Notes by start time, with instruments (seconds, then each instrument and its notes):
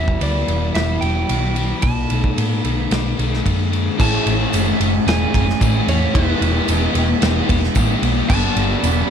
Already playing: picked electric bass E1, overdriven electric guitar E2 G3, clean electric guitar E3, analog synth pad G3 E4 B5, lead electric guitar E5
0.08 kick
0.21 picked electric bass D2, overdriven electric guitar B3, lead electric guitar D5, ride
0.48 picked electric bass E1, overdriven electric guitar E3, clean electric guitar B3, ride
0.75 picked electric bass E1, clean electric guitar G3, overdriven electric guitar B3, lead electric guitar E5, snare, ride
1.01 picked electric bass E1, overdriven electric guitar G3, clean electric guitar B3, lead electric guitar G5, ride
1.29 picked electric bass B1, overdriven electric guitar E3, clean electric guitar F#4, ride
1.56 overdriven electric guitar G3, clean electric guitar B3, ride
1.82 picked electric bass B1, clean electric guitar B2, overdriven electric guitar B2, analog synth pad D#4 A4, lead electric guitar A5, kick, ride
2.10 picked electric bass B1, overdriven electric guitar A3, ride
2.24 kick
2.37 picked electric bass A2, clean electric guitar F#3, overdriven electric guitar B3, ride
2.64 picked electric bass B1, overdriven electric guitar D#3, clean electric guitar D#4, ride
2.91 picked electric bass B1, clean electric guitar B3, overdriven electric guitar B3, snare, ride
3.18 picked electric bass B1, overdriven electric guitar A3, clean electric guitar D#4, ride
3.34 snare
3.45 picked electric bass F#2, overdriven electric guitar D#3, clean electric guitar A4, kick, ride
3.72 overdriven electric guitar A3, clean electric guitar D#4, ride
3.98 picked electric bass A1, clean electric guitar A2 E3 C#4 E4, overdriven electric guitar A2 E3 A3 C#4 A4, lead electric guitar A5, kick, crash
4.26 picked electric bass A1, ride
4.39 overdriven electric guitar A3 C#4 A4, muted clean electric guitar stroke
4.52 picked electric bass F#1, overdriven electric guitar A2 E3 A3 C#4 A4, clean electric guitar A2 E3 C#4 E4, ride, tambourine
4.79 picked electric bass F#1, overdriven electric guitar E3 A3 C#4 A4, clean electric guitar E3 C#4 E4, ride
4.93 clean electric guitar C#4 E4, muted overdriven electric guitar stroke
5.06 picked electric bass E1, overdriven electric guitar E3 A3 C#4 A4, lead electric guitar G#5, snare, ride
5.21 clean electric guitar C#4 E4
5.33 picked electric bass F#1, overdriven electric guitar E3 A3 C#4 A4, clean electric guitar E3 C#4 E4, kick, ride
5.47 muted overdriven electric guitar stroke, muted clean electric guitar stroke, snare
5.60 picked electric bass A1, overdriven electric guitar A2 E3 A3 C#4 A4, clean electric guitar A2 E3 C#4 E4, kick, ride, tambourine
5.86 picked electric bass E2, overdriven electric guitar E3 A3 C#4 A4, clean electric guitar E3 G#3 C#4, lead electric guitar C#5, ride
5.91 clean electric guitar E4
6.00 overdriven electric guitar A3 C#4 A4, clean electric guitar C#4 E4
6.05 clean electric guitar G#3
6.14 picked electric bass E1, overdriven electric guitar E2 B2 E3 B3 E4 G#4, clean electric guitar E3 G#3 B3 E4, lead electric guitar B4, kick, ride
6.41 picked electric bass E1, ride
6.54 overdriven electric guitar E3 B3 E4 G#4, muted clean electric guitar stroke
6.68 picked electric bass E1, overdriven electric guitar E2 B2 E3 B3 E4 G#4, clean electric guitar E3 G#3 B3 E4, ride, tambourine
6.95 picked electric bass E1, overdriven electric guitar E3 B3 E4 G#4, clean electric guitar E3 G#3 B3 E4, ride
7.08 clean electric guitar G#3 B3 E4, muted overdriven electric guitar stroke
7.20 picked electric bass E1, overdriven electric guitar E3 B3 E4 G#4, snare, ride
7.36 clean electric guitar G#3 B3 E4
7.48 picked electric bass E1, overdriven electric guitar E3 B3 E4 G#4, clean electric guitar E3 G#3 B3 E4, kick, ride
7.62 muted overdriven electric guitar stroke, muted clean electric guitar stroke, snare
7.74 picked electric bass A1, overdriven electric guitar E2 B2 E3 B3 E4 G#4, clean electric guitar E3 G#3 B3, kick, ride, tambourine
7.78 clean electric guitar E4
8.02 picked electric bass B1, overdriven electric guitar E3 B3 E4 G#4, clean electric guitar E3 G#3 B3 E4, ride
8.15 overdriven electric guitar E3 B3 E4 G#4, clean electric guitar G#3 B3 E4
8.28 picked electric bass G1, overdriven electric guitar G2 D3 G3 B3 D4 G4, clean electric guitar G3 B3 E4 B4 D5, analog synth pad G4 D5 G5 B5, lead electric guitar A5, kick, crash
8.56 picked electric bass G1, ride
8.69 overdriven electric guitar G3 B3 D4 G4, muted clean electric guitar stroke
8.83 picked electric bass E1, overdriven electric guitar G2 D3 G3 B3 D4 G4, clean electric guitar G3 B3 E4 B4 D5, ride, tambourine